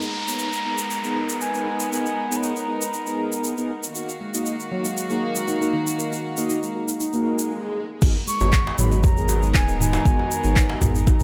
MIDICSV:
0, 0, Header, 1, 10, 480
1, 0, Start_track
1, 0, Tempo, 508475
1, 1812, Time_signature, 4, 2, 24, 8
1, 10605, End_track
2, 0, Start_track
2, 0, Title_t, "Flute"
2, 0, Program_c, 0, 73
2, 0, Note_on_c, 0, 82, 119
2, 1333, Note_on_c, 0, 80, 93
2, 1347, Note_off_c, 0, 82, 0
2, 1807, Note_off_c, 0, 80, 0
2, 1813, Note_on_c, 0, 80, 96
2, 2227, Note_on_c, 0, 83, 67
2, 2241, Note_off_c, 0, 80, 0
2, 2291, Note_on_c, 0, 82, 94
2, 2305, Note_off_c, 0, 83, 0
2, 3491, Note_off_c, 0, 82, 0
2, 7812, Note_on_c, 0, 85, 112
2, 8258, Note_off_c, 0, 85, 0
2, 8295, Note_on_c, 0, 83, 97
2, 8517, Note_off_c, 0, 83, 0
2, 8530, Note_on_c, 0, 82, 105
2, 8977, Note_off_c, 0, 82, 0
2, 9014, Note_on_c, 0, 80, 89
2, 9236, Note_off_c, 0, 80, 0
2, 9253, Note_on_c, 0, 80, 97
2, 10605, Note_off_c, 0, 80, 0
2, 10605, End_track
3, 0, Start_track
3, 0, Title_t, "Analog polysynth"
3, 0, Program_c, 1, 90
3, 257, Note_on_c, 1, 68, 69
3, 257, Note_on_c, 1, 73, 85
3, 258, Note_on_c, 1, 59, 78
3, 258, Note_on_c, 1, 63, 72
3, 465, Note_off_c, 1, 59, 0
3, 465, Note_off_c, 1, 63, 0
3, 465, Note_off_c, 1, 68, 0
3, 465, Note_off_c, 1, 73, 0
3, 611, Note_on_c, 1, 59, 69
3, 611, Note_on_c, 1, 63, 65
3, 611, Note_on_c, 1, 68, 66
3, 611, Note_on_c, 1, 70, 78
3, 747, Note_off_c, 1, 59, 0
3, 747, Note_off_c, 1, 63, 0
3, 747, Note_off_c, 1, 68, 0
3, 747, Note_off_c, 1, 70, 0
3, 975, Note_on_c, 1, 70, 97
3, 976, Note_on_c, 1, 59, 85
3, 976, Note_on_c, 1, 63, 82
3, 977, Note_on_c, 1, 68, 77
3, 1426, Note_off_c, 1, 59, 0
3, 1426, Note_off_c, 1, 63, 0
3, 1426, Note_off_c, 1, 70, 0
3, 1427, Note_off_c, 1, 68, 0
3, 1456, Note_on_c, 1, 59, 96
3, 1456, Note_on_c, 1, 68, 80
3, 1457, Note_on_c, 1, 63, 82
3, 1457, Note_on_c, 1, 70, 100
3, 1582, Note_off_c, 1, 68, 0
3, 1583, Note_off_c, 1, 59, 0
3, 1583, Note_off_c, 1, 63, 0
3, 1583, Note_off_c, 1, 70, 0
3, 1809, Note_on_c, 1, 59, 71
3, 1810, Note_on_c, 1, 63, 68
3, 1810, Note_on_c, 1, 68, 72
3, 1810, Note_on_c, 1, 70, 85
3, 1946, Note_off_c, 1, 59, 0
3, 1947, Note_off_c, 1, 63, 0
3, 1947, Note_off_c, 1, 68, 0
3, 1947, Note_off_c, 1, 70, 0
3, 2176, Note_on_c, 1, 59, 77
3, 2176, Note_on_c, 1, 63, 76
3, 2176, Note_on_c, 1, 68, 72
3, 2176, Note_on_c, 1, 73, 85
3, 2384, Note_off_c, 1, 59, 0
3, 2384, Note_off_c, 1, 63, 0
3, 2384, Note_off_c, 1, 73, 0
3, 2385, Note_off_c, 1, 68, 0
3, 2530, Note_on_c, 1, 59, 72
3, 2530, Note_on_c, 1, 63, 65
3, 2530, Note_on_c, 1, 70, 74
3, 2531, Note_on_c, 1, 68, 66
3, 2667, Note_off_c, 1, 59, 0
3, 2667, Note_off_c, 1, 63, 0
3, 2667, Note_off_c, 1, 68, 0
3, 2667, Note_off_c, 1, 70, 0
3, 2896, Note_on_c, 1, 59, 84
3, 2896, Note_on_c, 1, 70, 96
3, 2897, Note_on_c, 1, 63, 80
3, 2897, Note_on_c, 1, 68, 80
3, 3347, Note_off_c, 1, 59, 0
3, 3347, Note_off_c, 1, 63, 0
3, 3347, Note_off_c, 1, 68, 0
3, 3347, Note_off_c, 1, 70, 0
3, 3377, Note_on_c, 1, 59, 93
3, 3377, Note_on_c, 1, 63, 85
3, 3377, Note_on_c, 1, 68, 83
3, 3377, Note_on_c, 1, 70, 99
3, 3503, Note_off_c, 1, 59, 0
3, 3503, Note_off_c, 1, 63, 0
3, 3503, Note_off_c, 1, 68, 0
3, 3503, Note_off_c, 1, 70, 0
3, 3731, Note_on_c, 1, 63, 66
3, 3731, Note_on_c, 1, 66, 73
3, 3731, Note_on_c, 1, 70, 86
3, 3732, Note_on_c, 1, 58, 76
3, 3867, Note_off_c, 1, 58, 0
3, 3867, Note_off_c, 1, 63, 0
3, 3867, Note_off_c, 1, 66, 0
3, 3867, Note_off_c, 1, 70, 0
3, 4097, Note_on_c, 1, 58, 84
3, 4097, Note_on_c, 1, 63, 72
3, 4097, Note_on_c, 1, 66, 70
3, 4097, Note_on_c, 1, 75, 86
3, 4305, Note_off_c, 1, 58, 0
3, 4305, Note_off_c, 1, 63, 0
3, 4305, Note_off_c, 1, 66, 0
3, 4305, Note_off_c, 1, 75, 0
3, 4451, Note_on_c, 1, 58, 70
3, 4451, Note_on_c, 1, 63, 65
3, 4451, Note_on_c, 1, 66, 62
3, 4451, Note_on_c, 1, 70, 75
3, 4587, Note_off_c, 1, 58, 0
3, 4587, Note_off_c, 1, 63, 0
3, 4587, Note_off_c, 1, 66, 0
3, 4587, Note_off_c, 1, 70, 0
3, 4816, Note_on_c, 1, 70, 97
3, 4817, Note_on_c, 1, 63, 82
3, 4817, Note_on_c, 1, 66, 77
3, 4818, Note_on_c, 1, 58, 91
3, 5267, Note_off_c, 1, 58, 0
3, 5267, Note_off_c, 1, 63, 0
3, 5267, Note_off_c, 1, 66, 0
3, 5267, Note_off_c, 1, 70, 0
3, 5297, Note_on_c, 1, 63, 85
3, 5298, Note_on_c, 1, 58, 94
3, 5298, Note_on_c, 1, 66, 81
3, 5298, Note_on_c, 1, 70, 101
3, 5423, Note_off_c, 1, 58, 0
3, 5423, Note_off_c, 1, 63, 0
3, 5423, Note_off_c, 1, 66, 0
3, 5423, Note_off_c, 1, 70, 0
3, 5650, Note_on_c, 1, 66, 69
3, 5650, Note_on_c, 1, 70, 82
3, 5651, Note_on_c, 1, 58, 80
3, 5651, Note_on_c, 1, 63, 72
3, 5787, Note_off_c, 1, 58, 0
3, 5787, Note_off_c, 1, 63, 0
3, 5787, Note_off_c, 1, 66, 0
3, 5787, Note_off_c, 1, 70, 0
3, 6016, Note_on_c, 1, 58, 78
3, 6016, Note_on_c, 1, 63, 73
3, 6016, Note_on_c, 1, 66, 73
3, 6017, Note_on_c, 1, 75, 88
3, 6224, Note_off_c, 1, 58, 0
3, 6224, Note_off_c, 1, 63, 0
3, 6225, Note_off_c, 1, 66, 0
3, 6225, Note_off_c, 1, 75, 0
3, 6371, Note_on_c, 1, 66, 66
3, 6372, Note_on_c, 1, 58, 68
3, 6372, Note_on_c, 1, 63, 66
3, 6372, Note_on_c, 1, 70, 84
3, 6507, Note_off_c, 1, 66, 0
3, 6508, Note_off_c, 1, 58, 0
3, 6508, Note_off_c, 1, 63, 0
3, 6508, Note_off_c, 1, 70, 0
3, 6736, Note_on_c, 1, 58, 87
3, 6736, Note_on_c, 1, 63, 82
3, 6736, Note_on_c, 1, 70, 100
3, 6737, Note_on_c, 1, 66, 80
3, 7091, Note_off_c, 1, 58, 0
3, 7091, Note_off_c, 1, 63, 0
3, 7091, Note_off_c, 1, 66, 0
3, 7091, Note_off_c, 1, 70, 0
3, 7570, Note_on_c, 1, 59, 78
3, 7571, Note_on_c, 1, 63, 73
3, 7571, Note_on_c, 1, 68, 72
3, 7571, Note_on_c, 1, 70, 84
3, 7707, Note_off_c, 1, 59, 0
3, 7707, Note_off_c, 1, 63, 0
3, 7707, Note_off_c, 1, 68, 0
3, 7707, Note_off_c, 1, 70, 0
3, 7936, Note_on_c, 1, 73, 87
3, 7937, Note_on_c, 1, 59, 83
3, 7937, Note_on_c, 1, 68, 78
3, 7938, Note_on_c, 1, 63, 73
3, 8145, Note_off_c, 1, 59, 0
3, 8145, Note_off_c, 1, 63, 0
3, 8145, Note_off_c, 1, 68, 0
3, 8145, Note_off_c, 1, 73, 0
3, 8291, Note_on_c, 1, 63, 69
3, 8291, Note_on_c, 1, 68, 66
3, 8291, Note_on_c, 1, 70, 84
3, 8292, Note_on_c, 1, 59, 72
3, 8427, Note_off_c, 1, 63, 0
3, 8427, Note_off_c, 1, 68, 0
3, 8427, Note_off_c, 1, 70, 0
3, 8428, Note_off_c, 1, 59, 0
3, 8657, Note_on_c, 1, 59, 89
3, 8657, Note_on_c, 1, 63, 87
3, 8657, Note_on_c, 1, 68, 84
3, 8657, Note_on_c, 1, 70, 99
3, 9107, Note_off_c, 1, 59, 0
3, 9107, Note_off_c, 1, 63, 0
3, 9107, Note_off_c, 1, 68, 0
3, 9107, Note_off_c, 1, 70, 0
3, 9137, Note_on_c, 1, 59, 97
3, 9137, Note_on_c, 1, 63, 88
3, 9137, Note_on_c, 1, 68, 93
3, 9137, Note_on_c, 1, 70, 110
3, 9263, Note_off_c, 1, 59, 0
3, 9263, Note_off_c, 1, 63, 0
3, 9263, Note_off_c, 1, 68, 0
3, 9263, Note_off_c, 1, 70, 0
3, 9490, Note_on_c, 1, 59, 79
3, 9490, Note_on_c, 1, 63, 70
3, 9491, Note_on_c, 1, 68, 70
3, 9491, Note_on_c, 1, 70, 86
3, 9627, Note_off_c, 1, 59, 0
3, 9627, Note_off_c, 1, 63, 0
3, 9627, Note_off_c, 1, 68, 0
3, 9627, Note_off_c, 1, 70, 0
3, 9856, Note_on_c, 1, 59, 84
3, 9856, Note_on_c, 1, 63, 73
3, 9856, Note_on_c, 1, 68, 77
3, 9856, Note_on_c, 1, 73, 94
3, 10064, Note_off_c, 1, 63, 0
3, 10064, Note_off_c, 1, 68, 0
3, 10064, Note_off_c, 1, 73, 0
3, 10065, Note_off_c, 1, 59, 0
3, 10211, Note_on_c, 1, 59, 77
3, 10211, Note_on_c, 1, 70, 85
3, 10212, Note_on_c, 1, 63, 67
3, 10212, Note_on_c, 1, 68, 68
3, 10347, Note_off_c, 1, 59, 0
3, 10347, Note_off_c, 1, 70, 0
3, 10348, Note_off_c, 1, 63, 0
3, 10348, Note_off_c, 1, 68, 0
3, 10576, Note_on_c, 1, 68, 84
3, 10605, Note_off_c, 1, 68, 0
3, 10605, End_track
4, 0, Start_track
4, 0, Title_t, "Handpan"
4, 0, Program_c, 2, 114
4, 3972, Note_on_c, 2, 56, 69
4, 4091, Note_off_c, 2, 56, 0
4, 4452, Note_on_c, 2, 54, 91
4, 4565, Note_off_c, 2, 54, 0
4, 4577, Note_on_c, 2, 56, 71
4, 4639, Note_off_c, 2, 56, 0
4, 4817, Note_on_c, 2, 68, 73
4, 4879, Note_off_c, 2, 68, 0
4, 5057, Note_on_c, 2, 56, 72
4, 5166, Note_off_c, 2, 56, 0
4, 5172, Note_on_c, 2, 63, 97
4, 5285, Note_off_c, 2, 63, 0
4, 5296, Note_on_c, 2, 63, 97
4, 5400, Note_off_c, 2, 63, 0
4, 5411, Note_on_c, 2, 51, 102
4, 5525, Note_off_c, 2, 51, 0
4, 5537, Note_on_c, 2, 63, 74
4, 5640, Note_off_c, 2, 63, 0
4, 5652, Note_on_c, 2, 66, 78
4, 5720, Note_off_c, 2, 66, 0
4, 6018, Note_on_c, 2, 58, 75
4, 6079, Note_off_c, 2, 58, 0
4, 6131, Note_on_c, 2, 63, 90
4, 6245, Note_off_c, 2, 63, 0
4, 6257, Note_on_c, 2, 56, 68
4, 6319, Note_off_c, 2, 56, 0
4, 6496, Note_on_c, 2, 63, 71
4, 6600, Note_off_c, 2, 63, 0
4, 6610, Note_on_c, 2, 63, 96
4, 6730, Note_off_c, 2, 63, 0
4, 6736, Note_on_c, 2, 58, 76
4, 6840, Note_off_c, 2, 58, 0
4, 6851, Note_on_c, 2, 58, 77
4, 6919, Note_off_c, 2, 58, 0
4, 7810, Note_on_c, 2, 56, 72
4, 7930, Note_off_c, 2, 56, 0
4, 8289, Note_on_c, 2, 54, 103
4, 8403, Note_off_c, 2, 54, 0
4, 8416, Note_on_c, 2, 56, 72
4, 8478, Note_off_c, 2, 56, 0
4, 8656, Note_on_c, 2, 68, 82
4, 8719, Note_off_c, 2, 68, 0
4, 8898, Note_on_c, 2, 56, 76
4, 9006, Note_off_c, 2, 56, 0
4, 9011, Note_on_c, 2, 63, 101
4, 9124, Note_off_c, 2, 63, 0
4, 9136, Note_on_c, 2, 63, 103
4, 9240, Note_off_c, 2, 63, 0
4, 9251, Note_on_c, 2, 51, 106
4, 9364, Note_off_c, 2, 51, 0
4, 9377, Note_on_c, 2, 63, 77
4, 9480, Note_off_c, 2, 63, 0
4, 9491, Note_on_c, 2, 66, 84
4, 9559, Note_off_c, 2, 66, 0
4, 9858, Note_on_c, 2, 59, 73
4, 9920, Note_off_c, 2, 59, 0
4, 9972, Note_on_c, 2, 63, 99
4, 10085, Note_off_c, 2, 63, 0
4, 10099, Note_on_c, 2, 56, 73
4, 10160, Note_off_c, 2, 56, 0
4, 10337, Note_on_c, 2, 63, 80
4, 10440, Note_off_c, 2, 63, 0
4, 10451, Note_on_c, 2, 63, 98
4, 10571, Note_off_c, 2, 63, 0
4, 10605, End_track
5, 0, Start_track
5, 0, Title_t, "String section"
5, 0, Program_c, 3, 48
5, 0, Note_on_c, 3, 56, 74
5, 0, Note_on_c, 3, 59, 84
5, 0, Note_on_c, 3, 63, 68
5, 0, Note_on_c, 3, 70, 69
5, 3693, Note_off_c, 3, 56, 0
5, 3693, Note_off_c, 3, 59, 0
5, 3693, Note_off_c, 3, 63, 0
5, 3693, Note_off_c, 3, 70, 0
5, 3731, Note_on_c, 3, 77, 68
5, 3732, Note_on_c, 3, 51, 75
5, 3732, Note_on_c, 3, 66, 82
5, 3733, Note_on_c, 3, 58, 66
5, 7058, Note_off_c, 3, 51, 0
5, 7058, Note_off_c, 3, 66, 0
5, 7058, Note_off_c, 3, 77, 0
5, 7059, Note_off_c, 3, 58, 0
5, 7569, Note_on_c, 3, 56, 79
5, 7569, Note_on_c, 3, 59, 82
5, 7570, Note_on_c, 3, 63, 71
5, 7570, Note_on_c, 3, 70, 73
5, 10605, Note_off_c, 3, 56, 0
5, 10605, Note_off_c, 3, 59, 0
5, 10605, Note_off_c, 3, 63, 0
5, 10605, Note_off_c, 3, 70, 0
5, 10605, End_track
6, 0, Start_track
6, 0, Title_t, "Sub bass"
6, 0, Program_c, 4, 38
6, 7571, Note_on_c, 4, 32, 98
6, 7653, Note_off_c, 4, 32, 0
6, 7937, Note_on_c, 4, 32, 110
6, 8227, Note_off_c, 4, 32, 0
6, 8292, Note_on_c, 4, 32, 83
6, 8587, Note_off_c, 4, 32, 0
6, 8656, Note_on_c, 4, 32, 85
6, 9005, Note_off_c, 4, 32, 0
6, 9011, Note_on_c, 4, 27, 100
6, 9427, Note_off_c, 4, 27, 0
6, 9491, Note_on_c, 4, 32, 102
6, 9573, Note_off_c, 4, 32, 0
6, 9857, Note_on_c, 4, 32, 102
6, 10147, Note_off_c, 4, 32, 0
6, 10211, Note_on_c, 4, 32, 81
6, 10506, Note_off_c, 4, 32, 0
6, 10605, End_track
7, 0, Start_track
7, 0, Title_t, "Downlifter"
7, 0, Program_c, 5, 103
7, 0, Note_on_c, 5, 60, 66
7, 3732, Note_off_c, 5, 60, 0
7, 10605, End_track
8, 0, Start_track
8, 0, Title_t, "Swell"
8, 0, Program_c, 6, 103
8, 6611, Note_on_c, 6, 60, 71
8, 7572, Note_off_c, 6, 60, 0
8, 10605, End_track
9, 0, Start_track
9, 0, Title_t, "Djembe"
9, 7569, Note_on_c, 9, 63, 65
9, 7663, Note_off_c, 9, 63, 0
9, 7939, Note_on_c, 9, 63, 98
9, 8033, Note_off_c, 9, 63, 0
9, 8186, Note_on_c, 9, 62, 81
9, 8280, Note_off_c, 9, 62, 0
9, 8421, Note_on_c, 9, 63, 65
9, 8515, Note_off_c, 9, 63, 0
9, 8529, Note_on_c, 9, 64, 106
9, 8624, Note_off_c, 9, 64, 0
9, 8768, Note_on_c, 9, 63, 99
9, 8863, Note_off_c, 9, 63, 0
9, 9257, Note_on_c, 9, 63, 61
9, 9351, Note_off_c, 9, 63, 0
9, 9376, Note_on_c, 9, 62, 93
9, 9471, Note_off_c, 9, 62, 0
9, 9622, Note_on_c, 9, 63, 87
9, 9717, Note_off_c, 9, 63, 0
9, 10096, Note_on_c, 9, 62, 90
9, 10102, Note_on_c, 9, 63, 70
9, 10190, Note_off_c, 9, 62, 0
9, 10196, Note_off_c, 9, 63, 0
9, 10208, Note_on_c, 9, 64, 100
9, 10303, Note_off_c, 9, 64, 0
9, 10455, Note_on_c, 9, 63, 93
9, 10550, Note_off_c, 9, 63, 0
9, 10605, End_track
10, 0, Start_track
10, 0, Title_t, "Drums"
10, 16, Note_on_c, 9, 82, 35
10, 110, Note_off_c, 9, 82, 0
10, 262, Note_on_c, 9, 82, 70
10, 357, Note_off_c, 9, 82, 0
10, 365, Note_on_c, 9, 82, 59
10, 459, Note_off_c, 9, 82, 0
10, 498, Note_on_c, 9, 82, 42
10, 592, Note_off_c, 9, 82, 0
10, 735, Note_on_c, 9, 82, 75
10, 829, Note_off_c, 9, 82, 0
10, 852, Note_on_c, 9, 82, 58
10, 947, Note_off_c, 9, 82, 0
10, 981, Note_on_c, 9, 82, 36
10, 1075, Note_off_c, 9, 82, 0
10, 1219, Note_on_c, 9, 82, 65
10, 1313, Note_off_c, 9, 82, 0
10, 1332, Note_on_c, 9, 82, 65
10, 1426, Note_off_c, 9, 82, 0
10, 1455, Note_on_c, 9, 82, 35
10, 1550, Note_off_c, 9, 82, 0
10, 1696, Note_on_c, 9, 82, 72
10, 1791, Note_off_c, 9, 82, 0
10, 1818, Note_on_c, 9, 82, 59
10, 1913, Note_off_c, 9, 82, 0
10, 1944, Note_on_c, 9, 82, 40
10, 2038, Note_off_c, 9, 82, 0
10, 2188, Note_on_c, 9, 82, 70
10, 2282, Note_off_c, 9, 82, 0
10, 2296, Note_on_c, 9, 82, 64
10, 2390, Note_off_c, 9, 82, 0
10, 2419, Note_on_c, 9, 82, 41
10, 2513, Note_off_c, 9, 82, 0
10, 2657, Note_on_c, 9, 82, 83
10, 2751, Note_off_c, 9, 82, 0
10, 2771, Note_on_c, 9, 82, 63
10, 2866, Note_off_c, 9, 82, 0
10, 2893, Note_on_c, 9, 82, 38
10, 2988, Note_off_c, 9, 82, 0
10, 3136, Note_on_c, 9, 82, 69
10, 3230, Note_off_c, 9, 82, 0
10, 3246, Note_on_c, 9, 82, 63
10, 3341, Note_off_c, 9, 82, 0
10, 3376, Note_on_c, 9, 82, 36
10, 3470, Note_off_c, 9, 82, 0
10, 3617, Note_on_c, 9, 82, 71
10, 3712, Note_off_c, 9, 82, 0
10, 3730, Note_on_c, 9, 82, 73
10, 3825, Note_off_c, 9, 82, 0
10, 3860, Note_on_c, 9, 82, 41
10, 3955, Note_off_c, 9, 82, 0
10, 4098, Note_on_c, 9, 82, 81
10, 4192, Note_off_c, 9, 82, 0
10, 4207, Note_on_c, 9, 82, 61
10, 4302, Note_off_c, 9, 82, 0
10, 4341, Note_on_c, 9, 82, 38
10, 4435, Note_off_c, 9, 82, 0
10, 4575, Note_on_c, 9, 82, 72
10, 4669, Note_off_c, 9, 82, 0
10, 4693, Note_on_c, 9, 82, 67
10, 4787, Note_off_c, 9, 82, 0
10, 4814, Note_on_c, 9, 82, 36
10, 4909, Note_off_c, 9, 82, 0
10, 5054, Note_on_c, 9, 82, 81
10, 5148, Note_off_c, 9, 82, 0
10, 5172, Note_on_c, 9, 82, 59
10, 5266, Note_off_c, 9, 82, 0
10, 5304, Note_on_c, 9, 82, 38
10, 5398, Note_off_c, 9, 82, 0
10, 5540, Note_on_c, 9, 82, 76
10, 5634, Note_off_c, 9, 82, 0
10, 5658, Note_on_c, 9, 82, 59
10, 5752, Note_off_c, 9, 82, 0
10, 5783, Note_on_c, 9, 82, 37
10, 5877, Note_off_c, 9, 82, 0
10, 6012, Note_on_c, 9, 82, 71
10, 6106, Note_off_c, 9, 82, 0
10, 6131, Note_on_c, 9, 82, 64
10, 6226, Note_off_c, 9, 82, 0
10, 6259, Note_on_c, 9, 82, 42
10, 6354, Note_off_c, 9, 82, 0
10, 6496, Note_on_c, 9, 82, 76
10, 6591, Note_off_c, 9, 82, 0
10, 6610, Note_on_c, 9, 82, 62
10, 6704, Note_off_c, 9, 82, 0
10, 6731, Note_on_c, 9, 82, 37
10, 6825, Note_off_c, 9, 82, 0
10, 6973, Note_on_c, 9, 82, 80
10, 7067, Note_off_c, 9, 82, 0
10, 7568, Note_on_c, 9, 82, 49
10, 7570, Note_on_c, 9, 49, 98
10, 7571, Note_on_c, 9, 36, 120
10, 7663, Note_off_c, 9, 82, 0
10, 7665, Note_off_c, 9, 49, 0
10, 7666, Note_off_c, 9, 36, 0
10, 7813, Note_on_c, 9, 82, 81
10, 7908, Note_off_c, 9, 82, 0
10, 7932, Note_on_c, 9, 82, 38
10, 8026, Note_off_c, 9, 82, 0
10, 8047, Note_on_c, 9, 82, 48
10, 8050, Note_on_c, 9, 39, 103
10, 8051, Note_on_c, 9, 36, 117
10, 8141, Note_off_c, 9, 82, 0
10, 8144, Note_off_c, 9, 39, 0
10, 8146, Note_off_c, 9, 36, 0
10, 8290, Note_on_c, 9, 45, 90
10, 8292, Note_on_c, 9, 82, 95
10, 8384, Note_off_c, 9, 45, 0
10, 8386, Note_off_c, 9, 82, 0
10, 8418, Note_on_c, 9, 82, 40
10, 8512, Note_off_c, 9, 82, 0
10, 8528, Note_on_c, 9, 82, 52
10, 8531, Note_on_c, 9, 36, 127
10, 8623, Note_off_c, 9, 82, 0
10, 8626, Note_off_c, 9, 36, 0
10, 8658, Note_on_c, 9, 82, 38
10, 8752, Note_off_c, 9, 82, 0
10, 8766, Note_on_c, 9, 82, 98
10, 8860, Note_off_c, 9, 82, 0
10, 8897, Note_on_c, 9, 82, 37
10, 8991, Note_off_c, 9, 82, 0
10, 9010, Note_on_c, 9, 39, 105
10, 9011, Note_on_c, 9, 36, 122
10, 9011, Note_on_c, 9, 82, 58
10, 9105, Note_off_c, 9, 36, 0
10, 9105, Note_off_c, 9, 39, 0
10, 9105, Note_off_c, 9, 82, 0
10, 9141, Note_on_c, 9, 82, 37
10, 9235, Note_off_c, 9, 82, 0
10, 9251, Note_on_c, 9, 45, 80
10, 9264, Note_on_c, 9, 82, 98
10, 9345, Note_off_c, 9, 45, 0
10, 9358, Note_off_c, 9, 82, 0
10, 9379, Note_on_c, 9, 82, 37
10, 9474, Note_off_c, 9, 82, 0
10, 9491, Note_on_c, 9, 36, 118
10, 9496, Note_on_c, 9, 82, 52
10, 9585, Note_off_c, 9, 36, 0
10, 9590, Note_off_c, 9, 82, 0
10, 9735, Note_on_c, 9, 82, 88
10, 9829, Note_off_c, 9, 82, 0
10, 9853, Note_on_c, 9, 82, 41
10, 9947, Note_off_c, 9, 82, 0
10, 9971, Note_on_c, 9, 36, 125
10, 9971, Note_on_c, 9, 39, 108
10, 9974, Note_on_c, 9, 82, 59
10, 10066, Note_off_c, 9, 36, 0
10, 10066, Note_off_c, 9, 39, 0
10, 10069, Note_off_c, 9, 82, 0
10, 10210, Note_on_c, 9, 82, 101
10, 10211, Note_on_c, 9, 36, 64
10, 10212, Note_on_c, 9, 45, 89
10, 10304, Note_off_c, 9, 82, 0
10, 10306, Note_off_c, 9, 36, 0
10, 10306, Note_off_c, 9, 45, 0
10, 10338, Note_on_c, 9, 82, 45
10, 10432, Note_off_c, 9, 82, 0
10, 10451, Note_on_c, 9, 82, 58
10, 10452, Note_on_c, 9, 36, 124
10, 10546, Note_off_c, 9, 36, 0
10, 10546, Note_off_c, 9, 82, 0
10, 10571, Note_on_c, 9, 82, 41
10, 10605, Note_off_c, 9, 82, 0
10, 10605, End_track
0, 0, End_of_file